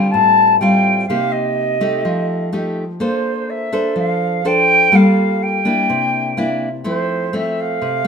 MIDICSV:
0, 0, Header, 1, 3, 480
1, 0, Start_track
1, 0, Key_signature, -1, "major"
1, 0, Tempo, 480000
1, 1085, Time_signature, 4, 2, 24, 8
1, 8073, End_track
2, 0, Start_track
2, 0, Title_t, "Flute"
2, 0, Program_c, 0, 73
2, 0, Note_on_c, 0, 79, 78
2, 106, Note_on_c, 0, 81, 85
2, 121, Note_off_c, 0, 79, 0
2, 586, Note_off_c, 0, 81, 0
2, 592, Note_on_c, 0, 79, 90
2, 1044, Note_off_c, 0, 79, 0
2, 1061, Note_on_c, 0, 77, 80
2, 1315, Note_on_c, 0, 75, 76
2, 1330, Note_off_c, 0, 77, 0
2, 2760, Note_off_c, 0, 75, 0
2, 3018, Note_on_c, 0, 72, 71
2, 3494, Note_on_c, 0, 76, 73
2, 3509, Note_off_c, 0, 72, 0
2, 3970, Note_off_c, 0, 76, 0
2, 3984, Note_on_c, 0, 77, 80
2, 4468, Note_on_c, 0, 79, 96
2, 4483, Note_off_c, 0, 77, 0
2, 4949, Note_on_c, 0, 77, 85
2, 4964, Note_off_c, 0, 79, 0
2, 5423, Note_on_c, 0, 79, 84
2, 5438, Note_off_c, 0, 77, 0
2, 6615, Note_off_c, 0, 79, 0
2, 6865, Note_on_c, 0, 72, 79
2, 7354, Note_on_c, 0, 76, 75
2, 7369, Note_off_c, 0, 72, 0
2, 7601, Note_on_c, 0, 77, 84
2, 7616, Note_off_c, 0, 76, 0
2, 8073, Note_off_c, 0, 77, 0
2, 8073, End_track
3, 0, Start_track
3, 0, Title_t, "Nylon-string guitar"
3, 0, Program_c, 1, 24
3, 0, Note_on_c, 1, 50, 62
3, 0, Note_on_c, 1, 55, 46
3, 0, Note_on_c, 1, 60, 52
3, 0, Note_on_c, 1, 65, 54
3, 107, Note_off_c, 1, 50, 0
3, 140, Note_on_c, 1, 45, 64
3, 574, Note_off_c, 1, 55, 0
3, 577, Note_off_c, 1, 60, 0
3, 578, Note_off_c, 1, 65, 0
3, 609, Note_on_c, 1, 55, 50
3, 617, Note_on_c, 1, 60, 53
3, 624, Note_on_c, 1, 65, 60
3, 1049, Note_off_c, 1, 55, 0
3, 1052, Note_off_c, 1, 60, 0
3, 1056, Note_off_c, 1, 65, 0
3, 1068, Note_off_c, 1, 45, 0
3, 1097, Note_on_c, 1, 48, 61
3, 1098, Note_on_c, 1, 58, 45
3, 1100, Note_on_c, 1, 63, 46
3, 1104, Note_on_c, 1, 67, 57
3, 1772, Note_off_c, 1, 58, 0
3, 1772, Note_off_c, 1, 63, 0
3, 1776, Note_off_c, 1, 67, 0
3, 1807, Note_on_c, 1, 57, 49
3, 1812, Note_on_c, 1, 63, 49
3, 1813, Note_on_c, 1, 67, 56
3, 2028, Note_off_c, 1, 48, 0
3, 2050, Note_on_c, 1, 53, 61
3, 2488, Note_off_c, 1, 57, 0
3, 2489, Note_off_c, 1, 63, 0
3, 2491, Note_off_c, 1, 67, 0
3, 2526, Note_on_c, 1, 57, 52
3, 2530, Note_on_c, 1, 63, 49
3, 2537, Note_on_c, 1, 67, 54
3, 2835, Note_off_c, 1, 57, 0
3, 2836, Note_off_c, 1, 63, 0
3, 2840, Note_off_c, 1, 67, 0
3, 2984, Note_off_c, 1, 53, 0
3, 3001, Note_on_c, 1, 58, 59
3, 3001, Note_on_c, 1, 62, 46
3, 3007, Note_on_c, 1, 69, 43
3, 3010, Note_on_c, 1, 72, 50
3, 3685, Note_off_c, 1, 62, 0
3, 3686, Note_off_c, 1, 69, 0
3, 3689, Note_off_c, 1, 72, 0
3, 3726, Note_on_c, 1, 62, 55
3, 3729, Note_on_c, 1, 69, 55
3, 3734, Note_on_c, 1, 72, 55
3, 3940, Note_off_c, 1, 58, 0
3, 3957, Note_on_c, 1, 53, 53
3, 4407, Note_off_c, 1, 62, 0
3, 4410, Note_off_c, 1, 69, 0
3, 4410, Note_off_c, 1, 72, 0
3, 4449, Note_on_c, 1, 62, 56
3, 4452, Note_on_c, 1, 69, 51
3, 4455, Note_on_c, 1, 72, 61
3, 4889, Note_off_c, 1, 62, 0
3, 4891, Note_off_c, 1, 69, 0
3, 4891, Note_off_c, 1, 72, 0
3, 4898, Note_off_c, 1, 53, 0
3, 4918, Note_on_c, 1, 55, 66
3, 4921, Note_on_c, 1, 58, 51
3, 4922, Note_on_c, 1, 65, 50
3, 4929, Note_on_c, 1, 69, 51
3, 5603, Note_off_c, 1, 58, 0
3, 5606, Note_off_c, 1, 65, 0
3, 5609, Note_off_c, 1, 69, 0
3, 5651, Note_on_c, 1, 58, 50
3, 5656, Note_on_c, 1, 62, 56
3, 5665, Note_on_c, 1, 64, 48
3, 5859, Note_off_c, 1, 55, 0
3, 5896, Note_on_c, 1, 48, 63
3, 6330, Note_off_c, 1, 58, 0
3, 6333, Note_off_c, 1, 62, 0
3, 6338, Note_off_c, 1, 64, 0
3, 6373, Note_on_c, 1, 58, 48
3, 6376, Note_on_c, 1, 62, 49
3, 6382, Note_on_c, 1, 64, 60
3, 6679, Note_off_c, 1, 58, 0
3, 6681, Note_off_c, 1, 62, 0
3, 6683, Note_off_c, 1, 64, 0
3, 6828, Note_off_c, 1, 48, 0
3, 6844, Note_on_c, 1, 53, 59
3, 6848, Note_on_c, 1, 57, 52
3, 6853, Note_on_c, 1, 64, 52
3, 6854, Note_on_c, 1, 60, 48
3, 7290, Note_off_c, 1, 57, 0
3, 7291, Note_off_c, 1, 60, 0
3, 7292, Note_off_c, 1, 64, 0
3, 7331, Note_on_c, 1, 57, 50
3, 7340, Note_on_c, 1, 60, 52
3, 7782, Note_off_c, 1, 53, 0
3, 7816, Note_on_c, 1, 48, 61
3, 8012, Note_off_c, 1, 57, 0
3, 8014, Note_off_c, 1, 60, 0
3, 8073, Note_off_c, 1, 48, 0
3, 8073, End_track
0, 0, End_of_file